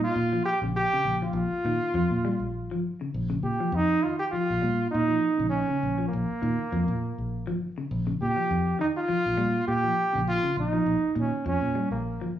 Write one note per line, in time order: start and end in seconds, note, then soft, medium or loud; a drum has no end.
0.00 0.10 A#2 medium
0.00 0.43 F4 loud
0.16 0.39 A#2 loud
0.33 0.49 F3 medium
0.45 0.59 G4 medium
0.62 0.85 A#1 medium
0.62 0.71 C#3 medium
0.76 1.19 G4 loud
0.94 1.09 C#3 medium
1.05 1.29 A#1 medium
1.22 1.39 F3 medium
1.22 2.81 F4 loud
1.33 1.47 A#1 loud
1.50 muted fingered electric bass stroke soft
1.65 1.78 A#2 medium
1.65 1.82 D#3 medium
1.94 2.07 F2 loud
1.94 2.11 F3 medium
2.11 2.34 A#2 medium
2.25 2.41 G3 medium
2.40 2.70 A#1 medium
2.70 2.94 G1 medium
2.70 2.88 F3 medium
3.01 3.08 C#3 medium
3.14 3.38 A#1 loud
3.30 3.46 C#3 medium
3.43 3.56 A#2 medium
3.43 3.76 G4 loud
3.60 3.77 F3 medium
3.72 3.96 F2 loud
3.72 4.04 D#4 loud
4.03 4.20 D#3 medium
4.03 4.19 F4 loud
4.19 4.25 G4 loud
4.32 4.49 F3 medium
4.32 4.88 F4 loud
4.32 muted fingered electric bass stroke soft
4.50 4.60 A#1 medium
4.62 4.86 A#2 loud
4.62 4.78 G3 medium
4.91 5.17 A#2 loud
4.91 5.47 D#4 loud
5.08 5.25 F3 medium
5.38 5.62 A#1 medium
5.38 5.45 C#3 medium
5.49 6.06 C#4 medium
5.68 5.84 C#3 medium
5.83 6.06 A#1 medium
5.98 6.14 F3 medium
6.08 7.54 A#3 medium
6.13 6.25 A#1 loud
6.30 muted fingered electric bass stroke soft
6.42 6.55 A#2 loud
6.42 6.58 D#3 medium
6.72 6.84 F2 loud
6.72 6.88 F3 medium
6.88 7.11 A#2 medium
7.18 7.48 A#1 medium
7.47 7.71 G1 medium
7.47 7.63 F3 medium
7.78 7.85 C#3 medium
7.91 8.14 A#1 loud
8.07 8.23 C#3 medium
8.22 8.33 A#2 medium
8.22 8.76 G4 loud
8.36 8.52 F3 medium
8.51 8.73 F2 loud
8.79 8.95 D#3 medium
8.79 8.88 D#4 medium
8.97 9.65 F4 loud
9.09 9.25 F3 medium
9.09 muted fingered electric bass stroke soft
9.26 9.36 A#1 medium
9.37 9.61 A#2 loud
9.37 9.54 G3 medium
9.68 9.91 A#2 loud
9.68 10.23 G4 loud
9.84 10.00 F3 medium
10.13 10.38 A#1 loud
10.13 10.20 C#3 medium
10.28 10.55 F4 loud
10.43 10.59 C#3 medium
10.57 10.80 A#1 medium
10.57 11.13 D#4 medium
10.73 10.89 F3 medium
10.86 10.99 A#1 loud
11.01 muted fingered electric bass stroke soft
11.15 11.28 A#2 loud
11.15 11.32 D#3 medium
11.20 11.45 C#4 medium
11.46 11.58 F2 loud
11.46 11.62 F3 medium
11.46 11.89 C#4 loud
11.61 11.84 A#2 medium
11.75 11.91 G3 medium
11.91 12.20 A#1 medium
11.91 12.31 A#3 medium
12.20 12.39 G1 medium
12.20 12.37 F3 medium